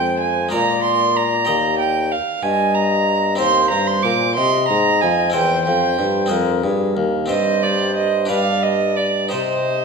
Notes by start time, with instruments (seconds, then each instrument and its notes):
Already playing: harpsichord F2 G#3 F4 C5, bassoon F2, flute C5, violin G5
0.20 violin G#5
0.49 harpsichord G#3 F4 D5, flute D5, violin A#5
0.53 bassoon A#2, harpsichord A#2
0.84 violin C6
1.17 violin A#5
1.45 harpsichord D#2 G4 D#5, bassoon D#2
1.79 violin G5
2.12 violin F5
2.42 harpsichord G2, bassoon G2, flute D#5, violin G#5
2.74 violin A#5
3.35 bassoon D#2, harpsichord C4 G4 C5, flute C5, violin C6
3.40 harpsichord D#2
3.71 bassoon G2, harpsichord G2, violin A#5
3.87 violin C6
4.03 bassoon A#2, harpsichord A#2, violin D6
4.35 bassoon C3, harpsichord C3, flute D#5, violin C6
4.69 bassoon G#2, harpsichord G#2, violin A#5
5.01 harpsichord F2, bassoon F2, violin G#5
5.30 harpsichord C4 A#4 C5
5.34 harpsichord E2, bassoon E2, flute C5, violin G5
5.66 harpsichord F2, bassoon F2, violin G5
5.99 harpsichord G2, bassoon G2
6.26 harpsichord C4 G#4 C5, flute A#4
6.31 bassoon F2, harpsichord F2
6.64 harpsichord G2, bassoon G2, flute G#4
6.95 bassoon D#2, harpsichord D#2, flute A#4
7.26 harpsichord C4 G4 C5, violin D#5
7.30 bassoon G2, harpsichord G2, flute C5
7.63 violin D5
7.96 violin D#5
8.25 harpsichord D4 G4 B4
8.30 harpsichord G2, bassoon G2, flute D5, violin F5
8.63 violin D#5
8.97 violin D5
9.28 harpsichord D#4 G4 C5, violin C5
9.33 harpsichord C3, bassoon C3, flute D#5